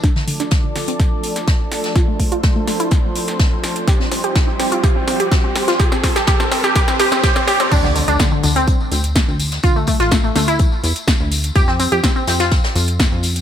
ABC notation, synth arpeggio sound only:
X:1
M:4/4
L:1/16
Q:1/4=125
K:Dm
V:1 name="Synth arpeggio sound"
D D, D, D D, D, D, C8 z | F A, A, F A, A, A, E8 z | G C C G C C C F G C C G C C C F | G C C G G C C G G C G C G C G C |
D D, D, D D, D, D, C8 z | F A, A, F A, A, A, E8 z | G C C G C C C F8 z |]